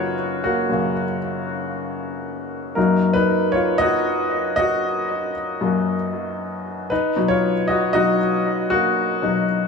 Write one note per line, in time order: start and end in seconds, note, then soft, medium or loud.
0.00 0.14 F#2 soft
0.00 0.15 C#3 soft
0.00 0.15 A#3 medium
0.00 2.79 C#4 medium
0.00 2.78 D#4 medium
0.00 2.79 F4 medium
0.00 0.41 F#4 medium
0.00 2.75 A#4 medium
0.00 2.79 B4 medium
0.00 2.79 C#5 medium
0.44 0.69 A#3 medium
0.44 1.18 F#4 medium
0.70 0.93 F#2 soft
0.70 1.05 C#3 soft
0.70 1.05 A#3 soft
2.75 3.11 F#2 soft
2.75 3.11 F#3 soft
2.75 3.12 A#3 soft
2.75 3.13 D#4 medium
2.75 3.16 A#4 medium
3.13 3.52 D#4 medium
3.13 3.54 B4 medium
3.52 3.79 F4 medium
3.52 3.80 C#5 medium
3.78 4.54 F#4 medium
3.78 4.55 D#5 loud
4.56 5.32 F#4 medium
4.56 5.30 D#5 loud
5.61 5.95 F#2 soft
5.61 5.96 F#3 soft
5.61 5.96 A#3 soft
6.90 7.16 D#4 medium
6.90 7.30 B4 medium
7.16 7.51 B2 medium
7.16 7.51 F#3 soft
7.16 7.51 D#4 soft
7.28 7.66 F4 medium
7.28 7.69 C#5 medium
7.68 7.93 F#4 medium
7.68 7.91 D#5 medium
7.93 8.17 B2 soft
7.93 8.17 F#3 soft
7.93 8.18 D#4 medium
7.93 8.68 F#4 medium
7.93 8.73 D#5 medium
8.70 9.45 A#3 medium
8.70 9.44 F#4 medium
9.22 9.68 B2 medium
9.22 9.68 F#3 soft
9.22 9.68 D#4 medium